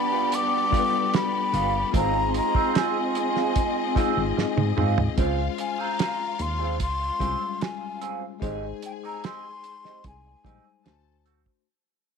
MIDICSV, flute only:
0, 0, Header, 1, 2, 480
1, 0, Start_track
1, 0, Key_signature, -4, "major"
1, 0, Tempo, 809717
1, 1152, Time_signature, 4, 2, 24, 8
1, 7216, End_track
2, 0, Start_track
2, 0, Title_t, "Flute"
2, 0, Program_c, 0, 73
2, 0, Note_on_c, 0, 83, 104
2, 205, Note_on_c, 0, 86, 110
2, 214, Note_off_c, 0, 83, 0
2, 685, Note_on_c, 0, 83, 102
2, 694, Note_off_c, 0, 86, 0
2, 1157, Note_off_c, 0, 83, 0
2, 1160, Note_on_c, 0, 82, 108
2, 1380, Note_off_c, 0, 82, 0
2, 1407, Note_on_c, 0, 82, 97
2, 1644, Note_on_c, 0, 80, 83
2, 1653, Note_off_c, 0, 82, 0
2, 2838, Note_off_c, 0, 80, 0
2, 3320, Note_on_c, 0, 80, 88
2, 3443, Note_on_c, 0, 82, 105
2, 3452, Note_off_c, 0, 80, 0
2, 3804, Note_on_c, 0, 84, 99
2, 3812, Note_off_c, 0, 82, 0
2, 4036, Note_off_c, 0, 84, 0
2, 4039, Note_on_c, 0, 84, 107
2, 4519, Note_on_c, 0, 80, 83
2, 4528, Note_off_c, 0, 84, 0
2, 4875, Note_off_c, 0, 80, 0
2, 5250, Note_on_c, 0, 79, 83
2, 5285, Note_off_c, 0, 79, 0
2, 5370, Note_on_c, 0, 82, 101
2, 5485, Note_on_c, 0, 84, 109
2, 5494, Note_off_c, 0, 82, 0
2, 5958, Note_off_c, 0, 84, 0
2, 5972, Note_on_c, 0, 80, 91
2, 6659, Note_off_c, 0, 80, 0
2, 7216, End_track
0, 0, End_of_file